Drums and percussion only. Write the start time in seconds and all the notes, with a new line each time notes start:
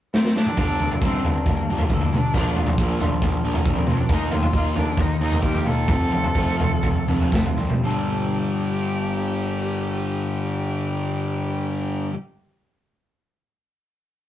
0.14 snare
0.25 snare
0.36 snare
0.46 mid tom
0.57 kick, floor tom
0.79 floor tom
0.92 floor tom
1.02 kick
1.25 floor tom
1.46 kick, floor tom
1.78 floor tom
1.90 kick
2.01 floor tom
2.13 mid tom
2.34 kick, floor tom
2.56 floor tom
2.67 floor tom
2.78 kick
3.00 floor tom
3.22 kick, floor tom
3.54 floor tom
3.66 kick
3.76 floor tom
3.87 mid tom
4.09 kick, floor tom
4.31 floor tom
4.42 floor tom
4.53 kick
4.76 floor tom
4.97 kick, floor tom
5.32 floor tom
5.43 kick
5.54 floor tom
5.66 mid tom
5.88 kick, floor tom
6.12 floor tom
6.24 floor tom
6.35 kick
6.60 floor tom
6.83 kick, floor tom
7.08 floor tom
7.21 floor tom
7.32 kick, snare
7.46 floor tom
7.70 mid tom